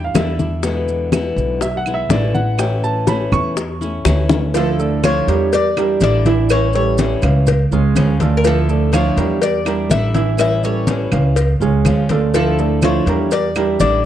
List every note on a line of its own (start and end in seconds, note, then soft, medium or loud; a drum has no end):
0.00 0.11 E2 medium
0.00 0.14 G3 soft
0.00 0.14 D4 soft
0.00 0.14 E4 medium
0.04 0.16 F5 medium
0.14 1.30 E2 medium
0.14 0.38 D3 medium
0.14 0.39 G3 medium
0.14 0.38 D4 medium
0.14 0.38 E4 medium
0.14 0.85 E5 medium
0.14 high bongo medium
0.14 low bongo medium
0.14 high conga medium
0.14 claves medium
0.14 maracas medium
0.39 0.63 G3 soft
0.39 0.63 D4 soft
0.39 0.63 E4 soft
0.39 high bongo soft
0.39 high conga medium
0.39 maracas soft
0.63 1.11 B2 medium
0.63 1.11 D3 medium
0.63 1.12 G#3 medium
0.63 1.12 B3 medium
0.63 1.12 E4 medium
0.63 high bongo medium
0.63 high conga soft
0.63 maracas medium
0.88 high conga soft
0.88 maracas soft
1.12 1.60 B2 medium
1.12 1.60 D3 medium
1.12 1.61 G#3 medium
1.12 1.61 B3 medium
1.12 1.61 E4 medium
1.12 high bongo medium
1.12 high conga medium
1.12 claves medium
1.12 maracas medium
1.36 2.06 B1 loud
1.36 high conga soft
1.36 maracas soft
1.61 1.78 E5 medium
1.61 muted nylon-string guitar stroke medium
1.61 high bongo medium
1.61 high conga soft
1.61 maracas medium
1.77 1.93 F#5 loud
1.86 2.10 G#3 soft
1.86 2.10 B3 medium
1.86 2.10 E4 medium
1.86 high conga soft
1.86 claves medium
1.86 maracas soft
1.94 2.10 E5 medium
2.09 3.26 A1 medium
2.09 2.34 B2 medium
2.09 2.34 D3 medium
2.09 2.34 G#3 medium
2.09 2.34 B3 medium
2.09 2.33 E4 medium
2.09 2.34 D5 medium
2.09 high bongo medium
2.09 low bongo medium
2.09 high conga medium
2.09 maracas medium
2.35 2.59 G#3 soft
2.35 2.59 B3 soft
2.35 2.58 E4 soft
2.35 2.58 F#5 loud
2.35 high conga medium
2.35 maracas soft
2.58 3.05 E3 medium
2.58 3.06 A3 medium
2.58 3.06 C#4 medium
2.58 3.07 E4 medium
2.58 2.83 G5 medium
2.58 high bongo medium
2.58 high conga soft
2.58 claves medium
2.58 maracas medium
2.84 3.07 A5 medium
2.84 high bongo soft
2.84 high conga soft
2.84 maracas soft
3.07 3.55 E3 medium
3.07 3.56 A3 medium
3.07 3.56 C#4 medium
3.07 3.56 E4 medium
3.07 3.32 B5 medium
3.07 high bongo medium
3.07 high conga medium
3.07 maracas medium
3.32 4.02 E2 medium
3.32 4.38 C#6 loud
3.32 high conga soft
3.32 low conga medium
3.32 claves medium
3.32 maracas soft
3.56 muted nylon-string guitar stroke medium
3.56 high bongo medium
3.56 high conga soft
3.56 maracas medium
3.81 4.04 A3 soft
3.81 4.05 C#4 medium
3.81 4.05 E4 medium
3.81 high bongo soft
3.81 high conga soft
3.81 maracas soft
4.05 5.21 D2 medium
4.05 4.29 E3 medium
4.05 4.29 A3 medium
4.05 4.29 C#4 medium
4.05 4.29 E4 medium
4.05 high bongo loud
4.05 high conga medium
4.05 claves medium
4.05 maracas medium
4.29 4.54 A3 soft
4.29 4.54 C#4 medium
4.29 4.53 E4 medium
4.29 low bongo medium
4.29 high conga medium
4.29 maracas soft
4.54 5.02 D3 medium
4.54 4.75 F3 medium
4.54 5.03 F3 medium
4.54 5.03 A3 medium
4.54 5.03 D4 medium
4.54 5.03 E4 medium
4.54 4.75 F4 medium
4.54 5.05 A4 loud
4.54 4.75 F5 medium
4.54 cowbell loud
4.54 high conga soft
4.54 maracas medium
4.79 4.99 A3 medium
4.79 4.99 A4 medium
4.79 5.00 D5 medium
4.79 high conga soft
4.79 maracas soft
5.03 5.51 D3 medium
5.03 5.24 F3 medium
5.03 5.52 F3 medium
5.03 5.52 A3 medium
5.03 5.51 D4 medium
5.03 5.52 E4 medium
5.03 5.24 F4 medium
5.03 5.54 C#5 loud
5.03 5.24 F5 medium
5.03 cowbell medium
5.03 high conga medium
5.03 claves medium
5.03 maracas medium
5.27 5.97 E2 medium
5.27 5.68 G3 medium
5.27 5.68 G4 medium
5.27 5.68 A#4 medium
5.27 cowbell medium
5.27 high conga soft
5.27 maracas soft
5.52 6.02 D5 loud
5.52 muted nylon-string guitar stroke medium
5.52 cowbell loud
5.52 high conga soft
5.52 maracas medium
5.77 6.17 G3 medium
5.77 6.00 G3 soft
5.77 6.00 D4 soft
5.77 6.00 E4 medium
5.77 6.17 G4 medium
5.77 6.17 A#4 medium
5.77 cowbell medium
5.77 high conga soft
5.77 claves medium
5.77 maracas soft
6.01 7.16 A1 medium
6.01 6.24 D3 medium
6.01 6.25 G3 medium
6.01 6.25 D4 medium
6.01 6.25 E4 medium
6.01 6.51 D5 loud
6.01 cowbell medium
6.01 high conga medium
6.01 maracas medium
6.26 6.66 E3 medium
6.26 6.50 G3 soft
6.26 6.49 D4 soft
6.26 6.49 E4 medium
6.26 6.66 E4 medium
6.26 6.66 E5 medium
6.26 cowbell medium
6.26 high conga medium
6.26 maracas soft
6.49 6.98 E3 medium
6.49 6.98 G3 medium
6.49 6.98 C#4 medium
6.49 6.99 E4 medium
6.49 6.74 C#5 loud
6.49 cowbell loud
6.49 high conga soft
6.49 claves medium
6.49 maracas medium
6.73 7.14 G3 medium
6.73 7.14 G4 medium
6.73 7.14 A4 medium
6.73 8.17 C#5 medium
6.73 high conga soft
6.73 maracas soft
6.98 7.46 E3 medium
6.98 7.47 G3 medium
6.98 7.47 C#4 medium
6.98 7.47 E4 medium
6.98 cowbell medium
6.98 high conga loud
6.98 maracas medium
7.22 7.68 C#2 medium
7.22 7.63 F5 medium
7.22 cowbell medium
7.22 high conga soft
7.22 low conga medium
7.22 claves medium
7.22 maracas soft
7.47 muted nylon-string guitar stroke medium
7.47 cowbell loud
7.47 high conga soft
7.47 low conga medium
7.47 maracas medium
7.71 7.94 C#2 medium
7.71 8.12 G#3 medium
7.71 7.96 G#3 soft
7.71 7.96 C#4 soft
7.71 7.95 F4 medium
7.71 8.12 G#4 medium
7.71 8.12 C#5 medium
7.71 high conga soft
7.71 maracas soft
7.95 9.11 D2 loud
7.95 8.19 C#3 medium
7.95 8.20 F3 medium
7.95 8.20 G#3 medium
7.95 8.19 C#4 medium
7.95 8.19 F4 medium
7.95 cowbell medium
7.95 high conga medium
7.95 claves medium
7.95 maracas medium
8.20 8.44 G#3 soft
8.20 8.41 A3 medium
8.20 8.44 C#4 soft
8.20 8.44 F4 medium
8.20 8.41 A4 medium
8.20 8.41 D5 medium
8.20 cowbell medium
8.20 high conga medium
8.20 maracas soft
8.37 8.44 A#4 medium
8.44 8.91 D3 medium
8.44 8.91 F3 medium
8.44 8.65 F3 medium
8.44 8.92 A3 medium
8.44 8.92 D4 medium
8.44 8.93 E4 medium
8.44 8.65 F4 medium
8.44 8.91 A4 medium
8.44 8.65 F5 medium
8.44 cowbell loud
8.44 high conga soft
8.44 maracas medium
8.69 8.89 A3 medium
8.69 8.89 A4 medium
8.69 8.89 D5 medium
8.69 high conga soft
8.69 maracas soft
8.92 9.40 D3 medium
8.92 9.41 F3 medium
8.92 9.13 F3 medium
8.92 9.41 A3 medium
8.92 9.40 D4 medium
8.92 9.41 E4 medium
8.92 9.13 F4 medium
8.92 9.43 C#5 loud
8.92 9.14 F5 medium
8.92 cowbell medium
8.92 high conga medium
8.92 claves medium
8.92 maracas medium
9.17 9.86 E2 loud
9.17 9.58 G3 medium
9.17 9.58 G4 medium
9.17 9.58 A#4 medium
9.17 cowbell medium
9.17 high conga soft
9.17 maracas soft
9.41 9.91 D5 loud
9.41 muted nylon-string guitar stroke medium
9.41 cowbell loud
9.41 high conga soft
9.41 maracas medium
9.65 10.06 G3 medium
9.65 9.89 G3 soft
9.65 9.89 D4 medium
9.65 9.89 E4 medium
9.65 10.06 G4 medium
9.65 10.07 A#4 medium
9.65 cowbell medium
9.65 high conga soft
9.65 claves medium
9.65 maracas soft
9.90 11.06 A1 medium
9.90 10.14 D3 medium
9.90 10.14 G3 medium
9.90 10.14 D4 medium
9.90 10.13 E4 medium
9.90 10.39 E5 loud
9.90 cowbell medium
9.90 high conga medium
9.90 maracas medium
10.14 10.55 E3 medium
10.14 10.37 G3 soft
10.14 10.38 D4 soft
10.14 10.38 E4 medium
10.14 10.55 E4 medium
10.14 10.55 E5 medium
10.14 cowbell medium
10.14 high conga medium
10.14 maracas soft
10.37 10.86 E3 medium
10.37 10.87 G3 medium
10.37 10.87 C#4 medium
10.37 10.87 E4 medium
10.37 10.64 E5 loud
10.37 cowbell loud
10.37 high conga soft
10.37 claves medium
10.37 maracas medium
10.63 11.04 G3 medium
10.63 11.04 G4 medium
10.63 11.04 A4 medium
10.63 12.06 C#5 medium
10.63 high conga soft
10.63 maracas soft
10.87 11.35 E3 medium
10.87 11.36 G3 medium
10.87 11.35 C#4 medium
10.87 11.36 E4 medium
10.87 cowbell medium
10.87 high conga medium
10.87 maracas medium
11.12 11.57 C#2 loud
11.12 11.53 F5 medium
11.12 cowbell medium
11.12 high conga soft
11.12 low conga medium
11.12 claves medium
11.12 maracas soft
11.36 muted nylon-string guitar stroke medium
11.36 cowbell loud
11.36 high conga soft
11.36 maracas medium
11.60 11.83 C#2 medium
11.60 12.01 G#3 medium
11.60 11.85 G#3 soft
11.60 11.85 C#4 soft
11.60 11.84 F4 medium
11.60 12.02 G#4 medium
11.60 12.02 C#5 medium
11.60 high conga soft
11.60 maracas soft
11.85 13.00 D2 medium
11.85 12.09 C#3 medium
11.85 12.09 F3 medium
11.85 12.09 G#3 medium
11.85 12.09 C#4 medium
11.85 12.09 F4 medium
11.85 cowbell medium
11.85 high conga medium
11.85 claves medium
11.85 maracas medium
12.09 12.34 G#3 soft
12.09 12.30 A3 medium
12.09 12.34 C#4 soft
12.09 12.33 F4 soft
12.09 12.31 A4 medium
12.09 12.31 D5 medium
12.09 cowbell medium
12.09 high conga medium
12.09 maracas soft
12.34 12.81 D3 medium
12.34 12.82 F3 medium
12.34 12.54 F3 medium
12.34 12.82 A3 medium
12.34 12.82 D4 medium
12.34 12.83 E4 medium
12.34 12.54 F4 medium
12.34 12.85 A4 medium
12.34 12.55 F5 medium
12.34 cowbell loud
12.34 high conga soft
12.34 maracas medium
12.58 12.79 A3 medium
12.58 12.79 A4 medium
12.58 12.79 D5 medium
12.58 high conga soft
12.58 maracas soft
12.82 13.30 D3 medium
12.82 13.31 F3 medium
12.82 13.03 F3 medium
12.82 13.31 A3 medium
12.82 13.31 D4 medium
12.82 13.31 E4 medium
12.82 13.03 F4 medium
12.82 13.33 C#5 loud
12.82 13.03 F5 medium
12.82 cowbell medium
12.82 high conga medium
12.82 claves medium
12.82 maracas medium
13.06 13.76 E2 loud
13.06 13.47 G3 medium
13.06 13.48 G4 medium
13.06 13.48 A#4 medium
13.06 cowbell medium
13.06 high conga soft
13.06 maracas soft
13.31 13.77 D5 loud
13.31 muted nylon-string guitar stroke medium
13.31 cowbell loud
13.31 high conga soft
13.31 maracas medium
13.55 13.96 G3 medium
13.55 13.79 G3 soft
13.55 13.80 D4 medium
13.55 13.79 E4 medium
13.55 13.96 G4 medium
13.55 13.96 A#4 medium
13.55 cowbell medium
13.55 high conga soft
13.55 claves medium
13.55 maracas soft
13.80 14.05 A1 medium
13.80 14.04 D3 medium
13.80 14.04 G3 medium
13.80 14.04 D4 medium
13.80 14.03 E4 medium
13.80 14.05 D5 loud
13.80 cowbell medium
13.80 high conga medium
13.80 maracas medium